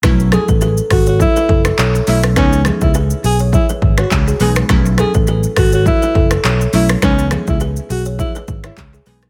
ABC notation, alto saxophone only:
X:1
M:4/4
L:1/16
Q:"Swing 16ths" 1/4=103
K:Bmix
V:1 name="Alto saxophone"
z2 G z3 F F E3 z3 E z | C2 z E z2 G z E z2 F z2 G z | z2 G z3 F F E3 z3 E z | C2 z E z2 F z E z2 E z2 G z |]